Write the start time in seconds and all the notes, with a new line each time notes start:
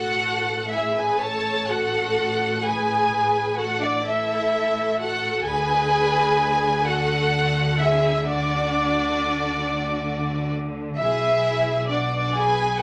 Already playing: A1 A2 F#4 A4 F#5
0.72 E4 G#4 E5
0.96 G#4 B4 G#5
1.20 A4 C#5 A5
1.69 F#4 A4 F#5
2.65 G#4 B4 G#5
3.57 F#4 A4 F#5
3.81 D4 F#4 D5
4.04 E4 A4 E5
5.00 F#4 A4 F#5
5.45 D2 D3 G#4 B4 G#5
6.85 F#4 A4 F#5
7.80 E4 G#4 E5
8.26 D4 F#4 D5
10.98 B1 B2 E4 G#4 E5
11.90 D4 F#4 D5
12.35 G#4 B4 G#5